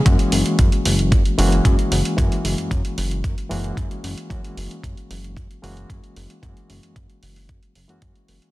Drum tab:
HH |xxoxxxoxxxoxxxox|xxoxxxoxxxoxxxox|xxoxxxoxxxoxxxox|xxoxxxooxxoxxxox|
BD |o---o---o---o---|o---o---o---o---|o---o---o---o---|o---o---o---o---|